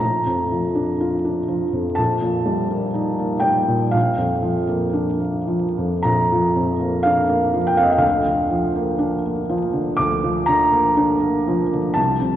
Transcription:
0.00 1.91 A#1 soft
0.00 1.97 A#5 medium
0.26 0.66 F2 soft
0.51 0.91 F3 soft
0.75 1.14 D4 soft
1.00 1.39 F4 soft
1.25 1.64 D4 soft
1.48 1.88 F3 soft
1.73 1.98 F2 soft
1.95 3.90 A#1 soft
1.95 3.43 A5 medium
2.21 2.61 A#2 soft
2.46 2.85 G3 soft
2.70 3.09 A#3 soft
2.94 3.34 D#4 soft
3.19 3.59 A#3 soft
3.40 3.83 G3 soft
3.40 3.92 G5 medium
3.68 3.94 A#2 soft
3.91 6.01 A#1 soft
3.91 6.04 F5 medium
4.17 4.59 F2 soft
4.43 4.84 F3 soft
4.68 5.10 A#3 soft
4.93 5.37 D4 soft
5.20 5.66 A#3 soft
5.47 5.93 F3 soft
5.78 6.21 F2 soft
6.02 7.99 A#1 soft
6.02 7.04 A#5 medium
6.32 6.71 F3 soft
6.56 6.95 F2 soft
6.80 7.19 A#3 soft
7.03 7.44 D4 soft
7.03 7.68 F5 medium
7.29 7.69 A#3 soft
7.53 7.93 F3 soft
7.67 7.77 G5 medium
7.77 8.03 F2 soft
7.77 7.86 F5 medium
7.83 7.94 D#5 medium
7.92 7.97 F5 medium
7.97 9.93 D2 soft
7.97 9.98 F5 medium
8.25 8.66 D3 soft
8.50 8.91 F3 soft
8.76 9.16 A#3 soft
8.98 9.39 D4 soft
9.25 9.65 A#3 soft
9.49 9.90 F3 medium
9.73 10.14 D3 soft
9.97 11.93 D2 soft
9.97 10.48 D6 medium
10.23 10.64 F3 soft
10.46 10.88 D3 soft
10.46 11.96 A#5 medium
10.72 11.13 A#3 medium
10.97 11.37 D4 soft
11.21 11.62 A#3 medium
11.48 11.88 F3 medium
11.73 11.98 D3 soft
11.94 12.36 C2 medium
11.94 12.36 A5 medium
12.21 12.36 C3 soft

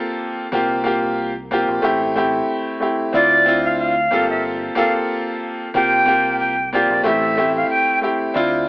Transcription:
0.00 0.45 A#3 loud
0.00 0.45 C4 medium
0.00 0.46 F4 loud
0.00 0.46 G4 medium
0.00 0.46 A4 loud
0.52 1.65 C2 loud
0.52 0.82 A#3 loud
0.52 0.83 C4 medium
0.52 0.84 F4 medium
0.52 0.84 G4 loud
0.84 1.31 A#3 loud
0.84 1.31 C4 medium
0.84 1.32 F4 medium
0.84 1.32 G4 loud
1.51 1.83 A#3 medium
1.51 1.81 C4 medium
1.51 1.84 F4 medium
1.51 1.83 G4 loud
1.69 1.82 A#1 medium
1.82 2.41 A1 loud
1.82 2.13 A3 loud
1.82 2.13 C4 medium
1.82 2.14 E4 medium
1.82 2.14 G4 loud
2.16 2.76 A3 medium
2.16 2.77 C4 medium
2.16 2.77 E4 medium
2.16 2.77 G4 loud
2.80 3.11 A3 medium
2.80 3.11 C4 medium
2.80 3.12 E4 medium
2.80 3.12 G4 medium
3.13 4.08 D2 loud
3.13 3.44 C4 medium
3.13 3.44 D4 medium
3.13 3.44 E4 medium
3.13 3.45 F4 loud
3.13 3.62 D5 loud
3.46 3.92 C4 loud
3.46 3.93 D4 medium
3.46 3.93 E4 medium
3.46 3.94 F4 loud
3.65 3.78 F5 medium
3.79 4.26 F5 medium
4.11 4.69 G1 loud
4.11 4.72 A#3 medium
4.11 4.72 C4 medium
4.11 4.72 F4 medium
4.11 4.73 G4 medium
4.11 4.73 A4 loud
4.30 4.43 E5 medium
4.75 5.67 A#3 loud
4.75 5.67 C4 medium
4.75 5.67 F4 medium
4.75 5.68 G4 medium
4.75 5.68 A4 loud
4.75 4.93 F5 medium
5.74 6.86 C2 loud
5.74 6.04 A#3 loud
5.74 6.05 C4 medium
5.74 6.05 F4 medium
5.74 6.06 G4 loud
5.74 6.36 G5 loud
6.06 6.53 A#3 loud
6.06 6.53 C4 medium
6.06 6.53 F4 medium
6.06 6.54 G4 loud
6.40 6.69 G5 medium
6.73 7.05 A#3 medium
6.73 7.03 C4 medium
6.73 7.06 F4 medium
6.73 7.05 G4 loud
6.73 7.02 D5 medium
6.90 7.03 A#1 medium
7.03 7.63 A1 loud
7.03 7.35 A3 loud
7.03 7.35 C4 medium
7.03 7.35 E4 medium
7.03 7.36 G4 loud
7.03 7.53 E5 loud
7.37 7.98 A3 medium
7.37 7.98 C4 medium
7.37 7.99 E4 medium
7.37 7.99 G4 loud
7.57 7.69 F5 medium
7.70 7.99 G5 loud
8.01 8.32 A3 medium
8.01 8.33 C4 medium
8.01 8.33 E4 medium
8.01 8.34 G4 loud
8.34 8.69 D2 loud
8.34 8.65 C4 medium
8.34 8.65 D4 medium
8.34 8.66 E4 medium
8.34 8.66 F4 loud

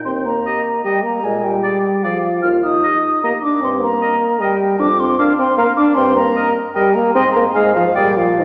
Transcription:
0.05 0.40 D#2 soft
0.05 0.27 C4 medium
0.05 0.11 C6 soft
0.25 0.84 A#3 soft
0.25 0.85 A#5 soft
0.46 0.61 G4 soft
0.46 0.61 D#5 soft
0.84 1.04 G3 medium
0.84 1.00 G4 soft
0.84 0.99 D#5 soft
0.84 1.04 G5 soft
1.03 1.22 A#3 medium
1.03 1.26 A#5 soft
1.23 1.58 A#2 soft
1.23 1.45 G#3 medium
1.23 1.45 G#5 medium
1.44 2.06 G3 medium
1.44 2.05 G5 soft
1.63 1.79 G#4 soft
1.63 1.78 D5 soft
2.03 2.43 F3 medium
2.03 2.19 G#4 soft
2.03 2.18 D5 soft
2.03 2.42 F5 soft
2.42 2.77 D#2 soft
2.42 2.66 F4 medium
2.42 2.48 F6 medium
2.64 3.23 D#4 medium
2.64 3.22 D#6 soft
2.84 2.99 G4 soft
2.84 2.98 D#5 soft
3.23 3.33 A#3 medium
3.23 3.39 G4 soft
3.23 3.38 D#5 soft
3.23 3.29 A#5 medium
3.43 3.63 D4 medium
3.43 3.62 D6 medium
3.62 3.96 G2 medium
3.62 3.83 C4 medium
3.62 3.70 C6 medium
3.81 4.42 A#3 medium
3.81 4.40 A#5 medium
4.02 4.17 A#4 soft
4.02 4.16 D#5 soft
4.41 4.79 G3 medium
4.41 4.55 A#4 soft
4.41 4.55 D#5 soft
4.41 4.81 G5 medium
4.79 5.13 F2 medium
4.79 4.88 D4 medium
4.79 5.01 D6 medium
4.99 5.19 C4 medium
4.99 5.17 C6 medium
5.18 5.38 D4 medium
5.18 5.33 A#4 soft
5.18 5.33 F5 soft
5.18 5.24 D6 medium
5.39 5.47 C4 medium
5.39 5.57 C6 medium
5.58 5.67 A#3 medium
5.58 5.73 A#4 medium
5.58 5.72 F5 medium
5.58 5.64 A#5 medium
5.77 5.98 D4 medium
5.77 5.83 D6 medium
5.95 6.29 G2 medium
5.95 6.16 C4 medium
5.95 6.15 C6 medium
6.16 6.54 A#3 medium
6.16 6.54 A#5 medium
6.36 6.50 A#4 medium
6.36 6.50 D#5 medium
6.75 6.97 G3 medium
6.75 6.90 A#4 medium
6.75 6.90 D#5 medium
6.75 6.96 G5 medium
6.94 7.14 A#3 medium
6.94 7.13 A#5 medium
7.14 7.49 G#2 medium
7.14 7.24 C4 medium
7.14 7.30 G#4 medium
7.14 7.30 D#5 medium
7.14 7.32 C6 medium
7.32 7.45 A#3 medium
7.32 7.38 A#5 medium
7.54 7.89 G#2 medium
7.54 7.76 G#3 medium
7.54 7.70 G#4 medium
7.54 7.70 F5 soft
7.54 7.60 G#5 medium
7.74 7.85 F3 medium
7.74 7.97 F5 medium
7.95 8.32 A#2 medium
7.95 8.20 G3 medium
7.95 8.12 G#4 medium
7.95 8.11 D5 medium
7.95 8.16 G5 medium
8.17 8.41 F3 medium
8.17 8.38 F5 medium
8.39 8.44 D#3 medium
8.39 8.44 D#5 medium

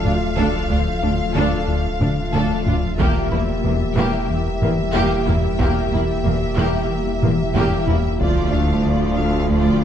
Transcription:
0.00 3.00 D1 medium
0.00 2.94 F3 medium
0.00 2.94 A3 medium
0.00 2.94 F4 medium
0.00 0.12 F4 medium
0.00 2.95 D5 medium
0.00 2.94 F5 medium
0.04 0.24 D2 medium
0.04 0.13 D2 soft
0.04 0.13 D2 medium
0.04 0.12 D4 soft
0.04 taiko low-mid soft
0.36 0.45 D2 medium
0.36 0.57 D2 medium
0.36 0.46 D2 medium
0.36 0.68 D4 medium
0.36 0.67 A4 medium
0.36 taiko medium
0.70 0.90 D2 medium
0.70 0.78 D2 soft
0.70 0.79 D2 soft
0.70 0.78 D4 medium
0.70 0.78 F4 soft
1.02 1.10 D2 medium
1.02 1.11 D2 soft
1.02 1.22 D2 medium
1.02 1.11 D4 soft
1.35 1.55 D2 medium
1.35 1.43 D2 medium
1.35 1.44 D2 medium
1.35 1.66 D4 medium
1.35 1.66 A4 medium
1.68 1.87 D2 medium
2.01 2.09 D2 medium
2.01 2.09 D2 soft
2.01 2.20 D3 medium
2.01 2.09 D4 medium
2.01 2.09 D4 soft
2.01 taiko low-mid medium
2.32 2.52 D2 medium
2.32 2.41 D2 medium
2.32 2.64 D4 medium
2.32 2.64 A4 medium
2.66 2.74 D2 soft
2.66 2.86 D2 medium
2.66 2.74 D2 soft
2.66 2.75 D4 medium
2.66 2.75 F4 medium
2.66 taiko low-mid medium
2.98 8.22 E1 medium
2.98 3.07 E1 medium
2.98 3.18 E2 medium
2.98 3.07 E2 medium
2.98 8.20 G3 medium
2.98 8.20 A#3 medium
2.98 8.16 A#3 medium
2.98 3.29 A#3 medium
2.98 8.20 E4 medium
2.98 8.20 G4 medium
2.98 3.29 G4 medium
2.98 8.16 E5 medium
2.98 8.20 E5 medium
2.98 taiko medium
3.31 3.39 E1 soft
3.31 3.40 E2 medium
3.31 3.51 E2 medium
3.31 3.40 A#3 medium
3.31 3.39 E4 medium
3.64 3.72 E1 medium
3.64 3.72 E2 medium
3.64 3.84 E2 medium
3.64 3.72 A#3 soft
3.64 3.73 A#3 soft
3.96 4.05 E1 medium
3.96 4.04 E2 medium
3.96 4.17 E2 medium
3.96 4.27 A#3 medium
3.96 4.26 G4 medium
4.29 4.49 E2 medium
4.62 4.70 E1 medium
4.62 4.70 E2 medium
4.62 4.81 E3 medium
4.62 4.70 A#3 medium
4.62 4.71 A#3 medium
4.62 taiko low-mid soft
4.94 5.03 E1 medium
4.94 5.03 E2 medium
4.94 5.14 E2 loud
4.94 5.24 A#3 medium
4.94 5.24 G4 medium
5.27 5.36 E1 medium
5.27 5.35 E2 medium
5.27 5.47 E2 medium
5.27 5.35 A#3 medium
5.27 5.35 E4 medium
5.27 taiko low-mid medium
5.59 5.68 E1 medium
5.59 5.67 E2 medium
5.59 5.80 E2 medium
5.59 5.90 A#3 medium
5.59 5.90 G4 medium
5.59 taiko medium
5.92 6.01 E1 medium
5.92 6.00 E2 medium
5.92 6.12 E2 medium
5.92 6.00 A#3 medium
5.92 6.01 E4 medium
6.24 6.33 E1 medium
6.24 6.33 E2 medium
6.24 6.45 E2 medium
6.24 6.32 A#3 medium
6.24 6.33 A#3 soft
6.57 6.65 E1 medium
6.57 6.66 E2 medium
6.57 6.77 E2 medium
6.57 6.87 A#3 medium
6.57 6.87 G4 medium
6.90 7.10 E2 medium
7.22 7.30 E1 medium
7.22 7.31 E2 medium
7.22 7.43 E3 medium
7.22 7.30 A#3 medium
7.22 7.31 A#3 medium
7.22 taiko low-mid medium
7.55 7.63 E1 medium
7.55 7.75 E2 medium
7.55 7.64 E2 medium
7.55 7.85 A#3 medium
7.55 7.85 G4 medium
7.55 taiko low-mid medium
7.87 7.95 E1 medium
7.87 7.96 E2 medium
7.87 8.08 E2 medium
7.87 7.96 A#3 medium
7.87 7.96 E4 medium
7.87 taiko low loud
8.19 9.84 D1 medium
8.19 9.84 D2 medium
8.19 8.40 D2 medium
8.19 9.84 F3 medium
8.19 8.51 F3 medium
8.19 9.84 A3 medium
8.19 8.50 F4 medium
8.19 9.84 F4 medium
8.19 8.51 D5 medium
8.19 9.84 D5 medium
8.19 taiko loud
8.53 8.73 D2 medium
8.53 8.86 A3 medium
8.53 8.85 D4 medium
8.53 8.85 F5 medium
8.85 9.05 D2 soft
8.85 9.18 F3 medium
8.85 9.18 F4 medium
8.85 9.18 D5 medium
9.17 9.38 D2 medium
9.17 9.51 A3 medium
9.17 9.50 D4 medium
9.17 9.50 F5 medium
9.49 9.70 D2 medium
9.49 9.81 F3 medium
9.49 9.80 F4 medium
9.49 9.81 D5 medium

